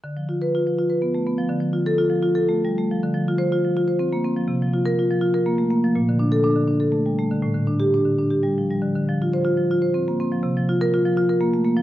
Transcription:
X:1
M:6/8
L:1/16
Q:3/8=81
K:Dm
V:1 name="Marimba"
z3 =B2 z6 z | z3 A2 z6 z | z3 c2 z6 z | z3 B2 z6 z |
z3 A2 z6 z | z3 G2 z6 z | z3 c2 z6 z | z3 B2 z6 z |]
V:2 name="Marimba"
D, F, F2 F F, F =B =B, A, B, F, | D, F, F2 F F, F A A, G, A, F, | D, F, F2 F F, F c C B, C F, | C, F, F2 F F, F B B, A, B, F, |
B,, D, D2 D D, D A A, G, A, D, | A,, D, D2 D D, D G G, F, G, D, | D, F, F2 F F, F c C B, C F, | C, F, F2 F F, F B B, A, B, F, |]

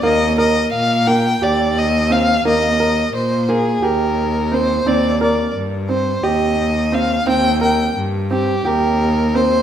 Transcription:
X:1
M:7/8
L:1/8
Q:1/4=87
K:Cm
V:1 name="Violin"
e e f g d e f | e2 c A B2 c | d d z c e2 f | g g z G B2 c |]
V:2 name="Grand piano"
B, B2 B, G2 C | B, B2 B, G2 C | C B2 C G2 C | C B2 C G2 C |]
V:3 name="Cello" clef=bass
E,,2 B,,2 E,,3 | E,,2 B,,2 E,,3 | E,,2 G,,2 E,,3 | E,,2 G,,2 E,,3 |]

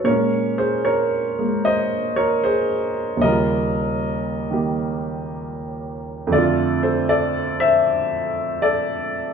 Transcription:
X:1
M:4/4
L:1/8
Q:"Swing" 1/4=77
K:Bblyd
V:1 name="Upright piano"
[B_d] [_Ac] [Bd]2 [c_e] [Bd] [Ac]2 | [B_e]4 z4 | [Ad] [Ac] [Ad] [ce]3 [Ad]2 |]
V:2 name="Upright piano" clef=bass
[B,,_A,_D]3 [A,B,]4- [A,B,] | [_E,,_D,G,F]3 [_E,B,G]4- [E,B,G] | [F,,D,A,F]8 |]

